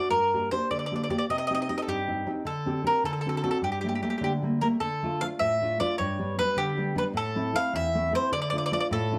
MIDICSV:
0, 0, Header, 1, 3, 480
1, 0, Start_track
1, 0, Tempo, 391389
1, 132, Time_signature, 6, 3, 24, 8
1, 11266, End_track
2, 0, Start_track
2, 0, Title_t, "Mandolin"
2, 0, Program_c, 0, 25
2, 129, Note_on_c, 0, 70, 77
2, 625, Note_off_c, 0, 70, 0
2, 630, Note_on_c, 0, 72, 74
2, 845, Note_off_c, 0, 72, 0
2, 867, Note_on_c, 0, 74, 61
2, 954, Note_off_c, 0, 74, 0
2, 968, Note_on_c, 0, 74, 43
2, 1043, Note_off_c, 0, 74, 0
2, 1057, Note_on_c, 0, 74, 55
2, 1152, Note_off_c, 0, 74, 0
2, 1174, Note_on_c, 0, 74, 43
2, 1252, Note_off_c, 0, 74, 0
2, 1270, Note_on_c, 0, 74, 52
2, 1339, Note_off_c, 0, 74, 0
2, 1354, Note_on_c, 0, 74, 50
2, 1431, Note_off_c, 0, 74, 0
2, 1453, Note_on_c, 0, 74, 64
2, 1526, Note_off_c, 0, 74, 0
2, 1596, Note_on_c, 0, 75, 68
2, 1681, Note_off_c, 0, 75, 0
2, 1696, Note_on_c, 0, 75, 59
2, 1789, Note_off_c, 0, 75, 0
2, 1803, Note_on_c, 0, 75, 65
2, 1881, Note_off_c, 0, 75, 0
2, 1896, Note_on_c, 0, 75, 66
2, 1971, Note_off_c, 0, 75, 0
2, 1986, Note_on_c, 0, 75, 56
2, 2061, Note_off_c, 0, 75, 0
2, 2076, Note_on_c, 0, 75, 54
2, 2155, Note_off_c, 0, 75, 0
2, 2179, Note_on_c, 0, 75, 68
2, 2231, Note_off_c, 0, 75, 0
2, 2236, Note_on_c, 0, 69, 42
2, 2313, Note_on_c, 0, 67, 69
2, 2315, Note_off_c, 0, 69, 0
2, 2818, Note_off_c, 0, 67, 0
2, 3025, Note_on_c, 0, 69, 58
2, 3473, Note_off_c, 0, 69, 0
2, 3517, Note_on_c, 0, 70, 65
2, 3723, Note_off_c, 0, 70, 0
2, 3745, Note_on_c, 0, 69, 61
2, 3823, Note_off_c, 0, 69, 0
2, 3838, Note_on_c, 0, 69, 40
2, 3922, Note_off_c, 0, 69, 0
2, 3937, Note_on_c, 0, 69, 54
2, 4022, Note_off_c, 0, 69, 0
2, 4037, Note_on_c, 0, 69, 52
2, 4116, Note_off_c, 0, 69, 0
2, 4136, Note_on_c, 0, 69, 52
2, 4200, Note_off_c, 0, 69, 0
2, 4215, Note_on_c, 0, 69, 46
2, 4288, Note_off_c, 0, 69, 0
2, 4303, Note_on_c, 0, 69, 60
2, 4381, Note_off_c, 0, 69, 0
2, 4462, Note_on_c, 0, 67, 50
2, 4544, Note_off_c, 0, 67, 0
2, 4559, Note_on_c, 0, 67, 41
2, 4650, Note_off_c, 0, 67, 0
2, 4672, Note_on_c, 0, 67, 46
2, 4753, Note_off_c, 0, 67, 0
2, 4766, Note_on_c, 0, 67, 41
2, 4834, Note_off_c, 0, 67, 0
2, 4849, Note_on_c, 0, 67, 40
2, 4924, Note_off_c, 0, 67, 0
2, 4938, Note_on_c, 0, 67, 38
2, 5016, Note_off_c, 0, 67, 0
2, 5029, Note_on_c, 0, 67, 44
2, 5106, Note_off_c, 0, 67, 0
2, 5124, Note_on_c, 0, 67, 37
2, 5185, Note_off_c, 0, 67, 0
2, 5200, Note_on_c, 0, 67, 53
2, 5294, Note_off_c, 0, 67, 0
2, 5660, Note_on_c, 0, 70, 68
2, 5725, Note_off_c, 0, 70, 0
2, 5891, Note_on_c, 0, 69, 66
2, 6390, Note_on_c, 0, 77, 88
2, 6413, Note_off_c, 0, 69, 0
2, 6454, Note_off_c, 0, 77, 0
2, 6614, Note_on_c, 0, 76, 70
2, 7082, Note_off_c, 0, 76, 0
2, 7113, Note_on_c, 0, 74, 77
2, 7331, Note_off_c, 0, 74, 0
2, 7336, Note_on_c, 0, 73, 63
2, 7798, Note_off_c, 0, 73, 0
2, 7834, Note_on_c, 0, 71, 89
2, 8048, Note_off_c, 0, 71, 0
2, 8067, Note_on_c, 0, 67, 74
2, 8517, Note_off_c, 0, 67, 0
2, 8562, Note_on_c, 0, 71, 72
2, 8623, Note_off_c, 0, 71, 0
2, 8795, Note_on_c, 0, 69, 77
2, 9268, Note_on_c, 0, 77, 92
2, 9289, Note_off_c, 0, 69, 0
2, 9479, Note_off_c, 0, 77, 0
2, 9512, Note_on_c, 0, 76, 80
2, 9959, Note_off_c, 0, 76, 0
2, 9997, Note_on_c, 0, 72, 83
2, 10202, Note_off_c, 0, 72, 0
2, 10213, Note_on_c, 0, 74, 76
2, 10306, Note_off_c, 0, 74, 0
2, 10322, Note_on_c, 0, 74, 59
2, 10412, Note_off_c, 0, 74, 0
2, 10425, Note_on_c, 0, 74, 70
2, 10508, Note_off_c, 0, 74, 0
2, 10523, Note_on_c, 0, 74, 58
2, 10598, Note_off_c, 0, 74, 0
2, 10618, Note_on_c, 0, 74, 74
2, 10691, Note_off_c, 0, 74, 0
2, 10709, Note_on_c, 0, 74, 61
2, 10780, Note_off_c, 0, 74, 0
2, 10798, Note_on_c, 0, 74, 69
2, 10869, Note_off_c, 0, 74, 0
2, 10948, Note_on_c, 0, 69, 82
2, 11266, Note_off_c, 0, 69, 0
2, 11266, End_track
3, 0, Start_track
3, 0, Title_t, "Nylon-string guitar"
3, 0, Program_c, 1, 24
3, 126, Note_on_c, 1, 43, 55
3, 411, Note_on_c, 1, 58, 31
3, 418, Note_on_c, 1, 62, 29
3, 421, Note_on_c, 1, 67, 38
3, 611, Note_off_c, 1, 43, 0
3, 617, Note_off_c, 1, 58, 0
3, 624, Note_off_c, 1, 62, 0
3, 628, Note_off_c, 1, 67, 0
3, 632, Note_on_c, 1, 58, 36
3, 637, Note_on_c, 1, 62, 39
3, 646, Note_on_c, 1, 67, 36
3, 869, Note_on_c, 1, 50, 64
3, 1029, Note_off_c, 1, 58, 0
3, 1032, Note_off_c, 1, 62, 0
3, 1035, Note_off_c, 1, 67, 0
3, 1122, Note_on_c, 1, 58, 28
3, 1128, Note_on_c, 1, 62, 35
3, 1134, Note_on_c, 1, 67, 38
3, 1327, Note_off_c, 1, 58, 0
3, 1330, Note_off_c, 1, 62, 0
3, 1341, Note_off_c, 1, 67, 0
3, 1341, Note_on_c, 1, 58, 40
3, 1346, Note_on_c, 1, 62, 45
3, 1347, Note_off_c, 1, 50, 0
3, 1356, Note_on_c, 1, 67, 52
3, 1533, Note_off_c, 1, 58, 0
3, 1535, Note_off_c, 1, 62, 0
3, 1542, Note_off_c, 1, 67, 0
3, 1590, Note_on_c, 1, 48, 62
3, 1843, Note_on_c, 1, 60, 38
3, 1848, Note_on_c, 1, 63, 34
3, 1849, Note_on_c, 1, 67, 43
3, 2059, Note_off_c, 1, 60, 0
3, 2066, Note_off_c, 1, 63, 0
3, 2069, Note_off_c, 1, 48, 0
3, 2071, Note_off_c, 1, 67, 0
3, 2074, Note_on_c, 1, 60, 36
3, 2080, Note_on_c, 1, 63, 38
3, 2086, Note_on_c, 1, 67, 39
3, 2295, Note_on_c, 1, 43, 55
3, 2470, Note_off_c, 1, 60, 0
3, 2474, Note_off_c, 1, 63, 0
3, 2477, Note_off_c, 1, 67, 0
3, 2547, Note_on_c, 1, 60, 28
3, 2557, Note_on_c, 1, 63, 29
3, 2557, Note_on_c, 1, 67, 39
3, 2760, Note_off_c, 1, 63, 0
3, 2763, Note_off_c, 1, 60, 0
3, 2771, Note_off_c, 1, 67, 0
3, 2776, Note_off_c, 1, 43, 0
3, 2776, Note_on_c, 1, 60, 52
3, 2779, Note_on_c, 1, 63, 40
3, 2785, Note_on_c, 1, 67, 54
3, 2964, Note_off_c, 1, 63, 0
3, 2965, Note_off_c, 1, 60, 0
3, 2970, Note_off_c, 1, 67, 0
3, 3004, Note_on_c, 1, 50, 53
3, 3260, Note_on_c, 1, 60, 37
3, 3266, Note_on_c, 1, 62, 33
3, 3275, Note_on_c, 1, 67, 45
3, 3468, Note_off_c, 1, 62, 0
3, 3469, Note_off_c, 1, 60, 0
3, 3470, Note_off_c, 1, 67, 0
3, 3481, Note_off_c, 1, 50, 0
3, 3483, Note_on_c, 1, 60, 35
3, 3483, Note_on_c, 1, 62, 38
3, 3489, Note_on_c, 1, 67, 53
3, 3674, Note_off_c, 1, 62, 0
3, 3675, Note_off_c, 1, 60, 0
3, 3675, Note_off_c, 1, 67, 0
3, 3727, Note_on_c, 1, 50, 66
3, 3996, Note_on_c, 1, 60, 32
3, 4002, Note_on_c, 1, 62, 25
3, 4008, Note_on_c, 1, 66, 36
3, 4201, Note_off_c, 1, 60, 0
3, 4203, Note_off_c, 1, 62, 0
3, 4205, Note_off_c, 1, 50, 0
3, 4211, Note_off_c, 1, 66, 0
3, 4215, Note_on_c, 1, 60, 53
3, 4219, Note_on_c, 1, 62, 46
3, 4226, Note_on_c, 1, 66, 46
3, 4401, Note_off_c, 1, 60, 0
3, 4402, Note_off_c, 1, 62, 0
3, 4407, Note_off_c, 1, 66, 0
3, 4435, Note_on_c, 1, 43, 51
3, 4705, Note_on_c, 1, 55, 35
3, 4711, Note_on_c, 1, 57, 34
3, 4717, Note_on_c, 1, 58, 33
3, 4914, Note_off_c, 1, 55, 0
3, 4920, Note_off_c, 1, 43, 0
3, 4921, Note_off_c, 1, 57, 0
3, 4925, Note_off_c, 1, 58, 0
3, 4929, Note_on_c, 1, 55, 37
3, 4935, Note_on_c, 1, 57, 41
3, 4942, Note_on_c, 1, 58, 40
3, 5162, Note_on_c, 1, 50, 61
3, 5333, Note_off_c, 1, 55, 0
3, 5336, Note_off_c, 1, 57, 0
3, 5339, Note_off_c, 1, 58, 0
3, 5421, Note_on_c, 1, 55, 36
3, 5431, Note_on_c, 1, 57, 28
3, 5441, Note_on_c, 1, 58, 37
3, 5638, Note_off_c, 1, 55, 0
3, 5644, Note_off_c, 1, 57, 0
3, 5645, Note_off_c, 1, 58, 0
3, 5652, Note_off_c, 1, 50, 0
3, 5653, Note_on_c, 1, 55, 39
3, 5658, Note_on_c, 1, 57, 40
3, 5661, Note_on_c, 1, 58, 46
3, 5848, Note_off_c, 1, 55, 0
3, 5851, Note_off_c, 1, 57, 0
3, 5853, Note_off_c, 1, 58, 0
3, 5894, Note_on_c, 1, 50, 54
3, 6165, Note_on_c, 1, 57, 40
3, 6174, Note_on_c, 1, 62, 30
3, 6180, Note_on_c, 1, 65, 43
3, 6385, Note_off_c, 1, 50, 0
3, 6386, Note_off_c, 1, 57, 0
3, 6396, Note_off_c, 1, 62, 0
3, 6399, Note_off_c, 1, 65, 0
3, 6401, Note_on_c, 1, 57, 34
3, 6409, Note_on_c, 1, 62, 41
3, 6417, Note_on_c, 1, 65, 47
3, 6629, Note_on_c, 1, 45, 63
3, 6797, Note_off_c, 1, 57, 0
3, 6803, Note_off_c, 1, 62, 0
3, 6805, Note_off_c, 1, 65, 0
3, 6888, Note_on_c, 1, 57, 33
3, 6899, Note_on_c, 1, 62, 37
3, 6905, Note_on_c, 1, 65, 34
3, 7098, Note_off_c, 1, 57, 0
3, 7100, Note_off_c, 1, 62, 0
3, 7109, Note_off_c, 1, 45, 0
3, 7109, Note_off_c, 1, 65, 0
3, 7111, Note_on_c, 1, 57, 44
3, 7118, Note_on_c, 1, 62, 38
3, 7124, Note_on_c, 1, 65, 57
3, 7301, Note_off_c, 1, 57, 0
3, 7303, Note_off_c, 1, 62, 0
3, 7308, Note_off_c, 1, 65, 0
3, 7352, Note_on_c, 1, 43, 71
3, 7587, Note_on_c, 1, 55, 44
3, 7595, Note_on_c, 1, 59, 33
3, 7602, Note_on_c, 1, 62, 35
3, 7815, Note_off_c, 1, 55, 0
3, 7821, Note_off_c, 1, 59, 0
3, 7825, Note_off_c, 1, 62, 0
3, 7826, Note_off_c, 1, 43, 0
3, 7829, Note_on_c, 1, 55, 37
3, 7833, Note_on_c, 1, 59, 37
3, 7843, Note_on_c, 1, 62, 49
3, 8051, Note_on_c, 1, 50, 58
3, 8222, Note_off_c, 1, 55, 0
3, 8225, Note_off_c, 1, 59, 0
3, 8227, Note_off_c, 1, 62, 0
3, 8307, Note_on_c, 1, 55, 37
3, 8311, Note_on_c, 1, 59, 41
3, 8317, Note_on_c, 1, 62, 37
3, 8516, Note_off_c, 1, 55, 0
3, 8519, Note_off_c, 1, 59, 0
3, 8521, Note_off_c, 1, 62, 0
3, 8529, Note_off_c, 1, 50, 0
3, 8530, Note_on_c, 1, 55, 48
3, 8535, Note_on_c, 1, 59, 50
3, 8536, Note_on_c, 1, 62, 55
3, 8720, Note_off_c, 1, 55, 0
3, 8722, Note_off_c, 1, 59, 0
3, 8723, Note_off_c, 1, 62, 0
3, 8750, Note_on_c, 1, 45, 65
3, 9018, Note_on_c, 1, 57, 36
3, 9023, Note_on_c, 1, 60, 38
3, 9030, Note_on_c, 1, 64, 45
3, 9228, Note_off_c, 1, 57, 0
3, 9237, Note_off_c, 1, 45, 0
3, 9238, Note_off_c, 1, 60, 0
3, 9242, Note_off_c, 1, 64, 0
3, 9243, Note_on_c, 1, 57, 48
3, 9251, Note_on_c, 1, 60, 40
3, 9260, Note_on_c, 1, 64, 51
3, 9484, Note_on_c, 1, 40, 82
3, 9644, Note_off_c, 1, 57, 0
3, 9649, Note_off_c, 1, 60, 0
3, 9652, Note_off_c, 1, 64, 0
3, 9747, Note_on_c, 1, 57, 45
3, 9754, Note_on_c, 1, 60, 35
3, 9754, Note_on_c, 1, 64, 44
3, 9953, Note_off_c, 1, 57, 0
3, 9957, Note_off_c, 1, 60, 0
3, 9963, Note_off_c, 1, 64, 0
3, 9964, Note_off_c, 1, 40, 0
3, 9967, Note_on_c, 1, 57, 52
3, 9973, Note_on_c, 1, 60, 48
3, 9978, Note_on_c, 1, 64, 48
3, 10156, Note_off_c, 1, 57, 0
3, 10158, Note_off_c, 1, 60, 0
3, 10162, Note_off_c, 1, 64, 0
3, 10203, Note_on_c, 1, 50, 63
3, 10454, Note_on_c, 1, 57, 46
3, 10462, Note_on_c, 1, 62, 41
3, 10464, Note_on_c, 1, 65, 37
3, 10676, Note_off_c, 1, 57, 0
3, 10682, Note_off_c, 1, 50, 0
3, 10682, Note_off_c, 1, 62, 0
3, 10689, Note_off_c, 1, 65, 0
3, 10691, Note_on_c, 1, 57, 36
3, 10697, Note_on_c, 1, 62, 43
3, 10704, Note_on_c, 1, 65, 46
3, 10927, Note_on_c, 1, 45, 73
3, 11089, Note_off_c, 1, 57, 0
3, 11093, Note_off_c, 1, 62, 0
3, 11097, Note_off_c, 1, 65, 0
3, 11180, Note_on_c, 1, 57, 30
3, 11191, Note_on_c, 1, 62, 39
3, 11201, Note_on_c, 1, 65, 36
3, 11266, Note_off_c, 1, 45, 0
3, 11266, Note_off_c, 1, 57, 0
3, 11266, Note_off_c, 1, 62, 0
3, 11266, Note_off_c, 1, 65, 0
3, 11266, End_track
0, 0, End_of_file